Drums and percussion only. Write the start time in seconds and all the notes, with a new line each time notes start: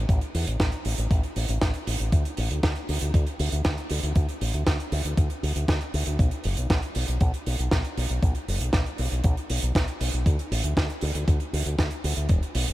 0.09 kick, closed hi-hat
0.21 closed hi-hat
0.35 open hi-hat
0.47 closed hi-hat
0.60 kick, snare, closed hi-hat
0.72 closed hi-hat
0.85 open hi-hat
0.98 closed hi-hat
1.11 kick, closed hi-hat
1.23 closed hi-hat
1.36 open hi-hat
1.49 closed hi-hat
1.61 kick, snare, closed hi-hat
1.74 closed hi-hat
1.87 open hi-hat
2.00 closed hi-hat
2.12 kick, closed hi-hat
2.25 closed hi-hat
2.37 open hi-hat
2.51 closed hi-hat
2.63 kick, snare, closed hi-hat
2.76 closed hi-hat
2.89 open hi-hat
3.01 closed hi-hat
3.14 kick, closed hi-hat
3.27 closed hi-hat
3.39 open hi-hat
3.52 closed hi-hat
3.65 kick, snare, closed hi-hat
3.78 closed hi-hat
3.90 open hi-hat
4.03 closed hi-hat
4.15 kick, closed hi-hat
4.29 closed hi-hat
4.41 open hi-hat
4.54 closed hi-hat
4.67 kick, snare, closed hi-hat
4.80 closed hi-hat
4.92 open hi-hat
5.05 closed hi-hat
5.17 kick, closed hi-hat
5.30 closed hi-hat
5.43 open hi-hat
5.56 closed hi-hat
5.68 kick, snare, closed hi-hat
5.81 closed hi-hat
5.94 open hi-hat
6.06 closed hi-hat
6.19 kick, closed hi-hat
6.31 closed hi-hat
6.44 open hi-hat
6.57 closed hi-hat
6.70 kick, snare, closed hi-hat
6.82 closed hi-hat
6.95 open hi-hat
7.08 closed hi-hat
7.21 kick, closed hi-hat
7.34 closed hi-hat
7.46 open hi-hat
7.59 closed hi-hat
7.71 kick, snare, closed hi-hat
7.85 closed hi-hat
7.98 open hi-hat
8.09 closed hi-hat
8.23 kick, closed hi-hat
8.35 closed hi-hat
8.48 open hi-hat
8.61 closed hi-hat
8.73 kick, snare, closed hi-hat
8.86 closed hi-hat
8.98 open hi-hat
9.12 closed hi-hat
9.24 kick, closed hi-hat
9.37 closed hi-hat
9.50 open hi-hat
9.62 closed hi-hat
9.75 kick, snare, closed hi-hat
9.88 closed hi-hat
10.01 open hi-hat
10.13 closed hi-hat
10.26 kick, closed hi-hat
10.39 closed hi-hat
10.52 open hi-hat
10.64 closed hi-hat
10.77 kick, snare, closed hi-hat
10.90 closed hi-hat
11.01 open hi-hat
11.15 closed hi-hat
11.28 kick, closed hi-hat
11.40 closed hi-hat
11.54 open hi-hat
11.66 closed hi-hat
11.79 kick, snare, closed hi-hat
11.91 closed hi-hat
12.04 open hi-hat
12.17 closed hi-hat
12.29 kick, closed hi-hat
12.43 closed hi-hat
12.55 open hi-hat
12.67 closed hi-hat